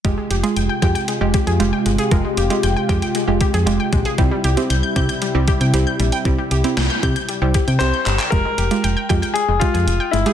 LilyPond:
<<
  \new Staff \with { instrumentName = "Grand piano" } { \time 4/4 \key f \minor \tempo 4 = 116 r1 | r1 | r1 | r2. c''4 |
bes'2 aes'8 f'4 e'8 | }
  \new Staff \with { instrumentName = "Synth arpeggio sound" } { \time 4/4 \key f \minor aes16 aes16 g'16 r16 g''16 g''16 g''16 g''16 aes16 aes16 g'16 aes'16 r16 g''16 aes16 aes'16 | aes16 aes16 g'16 r16 g''16 g''16 g''16 g''16 aes16 aes16 g'16 aes'16 r16 g''16 aes16 aes'16 | g16 g16 g'16 r16 g'''16 g'''16 g'''16 g'''16 g16 g16 g'16 g''16 r16 g'''16 g16 g''16 | g16 g16 g'16 r16 g'''16 g'''16 g'''16 g'''16 g16 g16 g'16 g''16 r16 g'''16 g16 g''16 |
aes16 aes16 g'16 r16 g''16 g''16 g''16 g''16 aes16 aes16 g'16 aes'16 r16 g''16 aes16 aes'16 | }
  \new Staff \with { instrumentName = "Synth pluck" } { \time 4/4 \key f \minor <aes f' g'>8 r16 <aes f' aes'>8 r16 <aes f' g'>8 r16 <aes f' g'>8 r16 <aes f' g'>8 r8 | <aes f' bes'>8 r16 <aes f' g'>8 r16 <aes f' g'>8 r16 <aes f' g'>8 r16 <aes f' g'>8 r8 | <c' e' g'>8 r16 <c' e' g'>8 r16 <c' e' g'>8 r16 <c' e' g'>8 r16 <c' e' g'>8 r8 | <c' e' g'>8 r16 <c' e' g'>8 r16 <c' e' g'>8 r16 <c' e' g'>8 r16 <c' e' g'>8 r8 |
<aes f' g'>8 r16 <aes f' g'>8 r16 <aes f' g'>8 r8 <aes f' g'>8. r8 <aes f' g'>16 | }
  \new Staff \with { instrumentName = "Analog synth pad" } { \clef bass \time 4/4 \key f \minor << { g'1~ | g'1~ | g'1~ | g'1 |
r1 | } \\ { <c aes f'>1~ | <c aes f'>1 | <c g e'>1~ | <c g e'>1 |
r1 | } >> }
  \new Staff \with { instrumentName = "FM bass" } { \clef bass \time 4/4 \key f \minor f,,16 r16 f,,16 r16 f,,16 r16 f,16 r8 f,,16 r16 f,16 f,,16 r16 g,,16 r16 | f,,16 r16 f,,16 r16 f,,16 r16 f,16 r8 f,,16 r16 f,16 f,,16 r16 bes,,16 r16 | c,16 r16 c,16 r16 c,16 r16 c16 r8 c,16 r16 c16 c,16 r16 bes,,16 r16 | c,16 r16 c,16 r16 c,16 r16 c16 r8 c,16 r16 c16 c,16 r16 g,,16 r16 |
f,,16 r16 f,,16 r16 f,,16 r16 f,16 r8 f,,16 r16 f,16 f,,16 r16 g,,16 r16 | }
  \new DrumStaff \with { instrumentName = "Drums" } \drummode { \time 4/4 <hh bd>8 hh16 hh16 hh8 <hh bd>16 hh16 hh8 <hh bd>16 hh16 hh8 hh16 hh16 | <hh bd>8 hh16 hh16 hh8 <hh bd>16 hh16 hh8 <hh bd>16 hh16 hh8 <hh bd>16 hh16 | <hh bd>8 hh16 hh16 hh8 <hh bd>16 hh16 hh8 <hh bd>16 hh16 hh8 hh16 hh16 | <hh bd>8 hh16 hh16 <hh sn>8 <hh bd>16 hh16 hh8 <hh bd>16 hh16 <hc hh>8 <hc hh>16 <hc hh>16 |
<hh bd>8 hh16 hh16 hh8 <hh bd>16 hh16 hh8 <hh bd>16 hh16 hh8 hh16 hh16 | }
>>